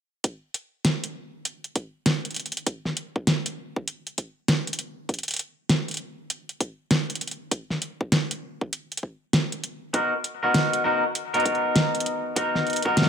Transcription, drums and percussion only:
0.24 kick loud
0.24 closed hi-hat medium
0.54 closed hi-hat medium
0.85 snare loud
0.85 closed hi-hat medium
1.04 closed hi-hat medium
1.45 closed hi-hat medium
1.64 closed hi-hat soft
1.76 kick loud
1.76 closed hi-hat medium
2.06 snare loud
2.06 closed hi-hat medium
2.25 closed hi-hat soft
2.31 closed hi-hat soft
2.34 closed hi-hat soft
2.36 closed hi-hat medium
2.40 closed hi-hat soft
2.46 closed hi-hat soft
2.52 closed hi-hat soft
2.57 closed hi-hat medium
2.66 kick loud
2.66 closed hi-hat medium
2.85 snare soft
2.97 closed hi-hat medium
3.16 kick loud
3.27 snare loud
3.27 closed hi-hat medium
3.46 closed hi-hat medium
3.76 kick loud
3.88 closed hi-hat medium
4.07 closed hi-hat soft
4.18 kick medium
4.18 closed hi-hat medium
4.48 snare loud
4.48 closed hi-hat medium
4.67 closed hi-hat soft
4.73 closed hi-hat medium
4.79 closed hi-hat medium
5.09 kick loud
5.09 closed hi-hat soft
5.14 closed hi-hat soft
5.19 closed hi-hat soft
5.23 closed hi-hat soft
5.28 closed hi-hat medium
5.31 closed hi-hat medium
5.34 closed hi-hat medium
5.36 closed hi-hat medium
5.39 closed hi-hat medium
5.69 snare loud
5.69 closed hi-hat medium
5.88 closed hi-hat soft
5.91 closed hi-hat soft
5.94 closed hi-hat soft
5.97 closed hi-hat medium
6.30 closed hi-hat medium
6.49 closed hi-hat soft
6.60 kick loud
6.60 closed hi-hat medium
6.91 snare loud
6.91 closed hi-hat medium
7.10 closed hi-hat soft
7.15 closed hi-hat medium
7.21 closed hi-hat medium
7.27 closed hi-hat soft
7.31 closed hi-hat soft
7.51 kick loud
7.51 closed hi-hat medium
7.70 snare soft
7.82 closed hi-hat medium
8.01 kick loud
8.12 snare loud
8.12 closed hi-hat medium
8.31 closed hi-hat medium
8.61 kick loud
8.73 closed hi-hat medium
8.92 closed hi-hat soft
8.97 closed hi-hat medium
9.03 kick medium
9.33 snare loud
9.33 closed hi-hat medium
9.52 closed hi-hat soft
9.64 closed hi-hat medium
9.94 kick loud
9.94 closed hi-hat medium
10.24 closed hi-hat medium
10.54 snare loud
10.54 closed hi-hat medium
10.73 closed hi-hat medium
11.15 closed hi-hat medium
11.34 closed hi-hat soft
11.40 closed hi-hat soft
11.45 kick loud
11.45 closed hi-hat medium
11.55 closed hi-hat soft
11.76 snare loud
11.76 closed hi-hat medium
11.95 closed hi-hat soft
12.00 closed hi-hat medium
12.06 closed hi-hat medium
12.36 kick loud
12.36 closed hi-hat medium
12.55 snare soft
12.67 closed hi-hat soft
12.70 closed hi-hat soft
12.73 closed hi-hat soft
12.76 closed hi-hat soft
12.82 kick medium
12.82 closed hi-hat soft
12.97 snare loud
12.97 closed hi-hat medium
13.02 snare medium

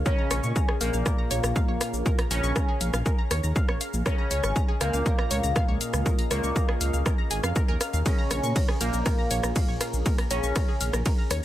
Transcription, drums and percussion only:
0.06 kick loud
0.06 shaker medium
0.31 cross-stick medium
0.31 open hi-hat loud
0.31 shaker medium
0.43 shaker medium
0.56 kick loud
0.56 shaker medium
0.69 cross-stick medium
0.81 open hi-hat loud
0.81 shaker medium
0.94 shaker medium
1.06 kick loud
1.06 cross-stick soft
1.06 shaker medium
1.31 open hi-hat loud
1.31 shaker medium
1.44 cross-stick medium
1.44 shaker medium
1.56 kick loud
1.56 shaker medium
1.81 cross-stick medium
1.81 open hi-hat loud
1.81 shaker medium
1.94 shaker medium
2.06 kick loud
2.06 shaker medium
2.19 cross-stick medium
2.19 open hi-hat medium
2.31 open hi-hat loud
2.31 shaker medium
2.44 shaker medium
2.56 kick loud
2.56 cross-stick medium
2.56 shaker medium
2.81 open hi-hat loud
2.81 shaker medium
2.94 cross-stick medium
2.94 shaker medium
3.06 kick loud
3.06 shaker medium
3.31 cross-stick medium
3.31 open hi-hat loud
3.31 shaker medium
3.44 shaker medium
3.56 kick loud
3.56 shaker medium
3.69 cross-stick medium
3.81 open hi-hat loud
3.81 shaker medium
3.94 shaker medium
4.06 kick loud
4.06 cross-stick medium
4.06 shaker medium
4.31 open hi-hat loud
4.31 shaker medium
4.44 cross-stick medium
4.44 shaker medium
4.56 kick loud
4.56 shaker medium
4.81 cross-stick medium
4.81 open hi-hat loud
4.81 shaker medium
4.94 shaker medium
5.06 kick loud
5.06 shaker medium
5.19 cross-stick medium
5.31 open hi-hat loud
5.31 shaker medium
5.44 shaker medium
5.56 kick loud
5.56 cross-stick medium
5.56 shaker medium
5.81 open hi-hat loud
5.81 shaker medium
5.94 cross-stick medium
5.94 shaker medium
6.06 kick loud
6.06 shaker medium
6.19 open hi-hat medium
6.31 cross-stick medium
6.31 open hi-hat loud
6.31 shaker medium
6.44 shaker medium
6.56 kick loud
6.56 shaker medium
6.69 cross-stick medium
6.81 open hi-hat loud
6.81 shaker medium
6.94 shaker medium
7.06 kick loud
7.06 cross-stick medium
7.06 shaker medium
7.31 open hi-hat loud
7.31 shaker medium
7.44 cross-stick medium
7.44 shaker medium
7.56 kick loud
7.56 shaker medium
7.81 cross-stick medium
7.81 open hi-hat loud
7.81 shaker medium
7.93 shaker medium
8.06 kick loud
8.06 ride medium
8.06 shaker medium
8.31 cross-stick medium
8.31 open hi-hat loud
8.31 shaker medium
8.44 shaker medium
8.56 kick loud
8.56 ride medium
8.56 shaker medium
8.68 cross-stick medium
8.81 open hi-hat loud
8.81 shaker medium
8.93 shaker medium
9.06 kick loud
9.06 cross-stick medium
9.06 ride medium
9.06 shaker medium
9.31 open hi-hat loud
9.31 shaker medium
9.43 cross-stick medium
9.43 shaker medium
9.56 kick loud
9.56 ride medium
9.56 shaker medium
9.81 cross-stick medium
9.81 open hi-hat loud
9.81 shaker medium
9.93 shaker medium
10.06 kick loud
10.06 ride medium
10.06 shaker medium
10.18 cross-stick medium
10.18 open hi-hat medium
10.31 open hi-hat loud
10.31 shaker medium
10.43 shaker medium
10.56 kick loud
10.56 cross-stick soft
10.56 ride medium
10.56 shaker medium
10.81 open hi-hat loud
10.81 shaker medium
10.93 cross-stick medium
10.93 shaker medium
11.06 kick loud
11.06 ride medium
11.06 shaker medium
11.31 cross-stick medium
11.31 open hi-hat loud
11.31 shaker medium

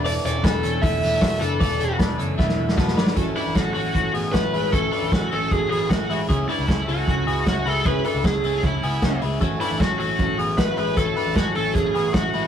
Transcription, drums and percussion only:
0.05 hi-hat pedal medium
0.05 open hi-hat medium
0.25 hi-hat pedal medium
0.25 open hi-hat medium
0.44 kick loud
0.44 snare loud
0.44 hi-hat pedal medium
0.44 open hi-hat medium
0.63 hi-hat pedal medium
0.63 open hi-hat medium
0.83 kick loud
0.83 hi-hat pedal medium
0.83 open hi-hat medium
1.03 hi-hat pedal medium
1.03 open hi-hat medium
1.22 kick loud
1.22 snare loud
1.22 hi-hat pedal medium
1.22 open hi-hat medium
1.41 hi-hat pedal medium
1.41 open hi-hat medium
1.61 kick loud
1.61 hi-hat pedal medium
1.61 open hi-hat medium
1.80 hi-hat pedal medium
1.80 open hi-hat medium
1.99 kick loud
1.99 snare loud
1.99 hi-hat pedal medium
1.99 open hi-hat medium
2.19 hi-hat pedal medium
2.19 open hi-hat medium
2.39 kick loud
2.39 snare medium
2.49 snare medium
2.69 snare medium
2.78 kick loud
2.78 snare medium
2.88 snare medium
2.97 snare loud
3.07 snare loud
3.16 kick loud
3.16 closed hi-hat medium
3.36 open hi-hat medium
3.55 kick loud
3.55 snare loud
3.55 closed hi-hat medium
3.75 open hi-hat medium
3.95 kick loud
3.95 closed hi-hat medium
4.15 open hi-hat medium
4.34 kick medium
4.34 snare loud
4.34 closed hi-hat medium
4.54 open hi-hat medium
4.73 kick loud
4.73 closed hi-hat medium
4.93 open hi-hat medium
5.12 kick loud
5.12 snare loud
5.12 closed hi-hat medium
5.32 open hi-hat medium
5.51 kick loud
5.51 closed hi-hat medium
5.72 open hi-hat medium
5.91 kick loud
5.91 snare loud
5.91 closed hi-hat medium
6.10 open hi-hat medium
6.29 kick loud
6.29 closed hi-hat medium
6.49 open hi-hat medium
6.68 kick loud
6.68 snare loud
6.68 closed hi-hat medium
6.88 open hi-hat medium
7.08 kick loud
7.08 closed hi-hat medium
7.28 open hi-hat medium
7.46 kick loud
7.46 snare loud
7.46 closed hi-hat medium
7.66 open hi-hat medium
7.85 kick loud
7.85 closed hi-hat medium
8.05 open hi-hat medium
8.24 kick loud
8.24 snare loud
8.24 closed hi-hat medium
8.44 open hi-hat medium
8.63 kick loud
8.63 closed hi-hat medium
8.83 open hi-hat medium
9.02 kick loud
9.02 snare loud
9.02 closed hi-hat medium
9.22 open hi-hat medium
9.41 kick loud
9.41 closed hi-hat medium
9.61 open hi-hat medium
9.80 kick loud
9.80 snare loud
9.80 closed hi-hat medium
10.00 open hi-hat medium
10.19 kick loud
10.19 closed hi-hat medium
10.39 open hi-hat medium
10.58 kick loud
10.58 snare loud
10.58 closed hi-hat medium
10.77 open hi-hat medium
10.97 kick loud
10.97 closed hi-hat medium
11.16 open hi-hat medium
11.35 kick loud
11.35 snare loud
11.35 closed hi-hat medium
11.55 open hi-hat medium
11.75 kick loud
11.75 closed hi-hat medium
11.95 open hi-hat medium
12.14 kick loud
12.14 snare loud
12.14 closed hi-hat medium
12.33 open hi-hat medium

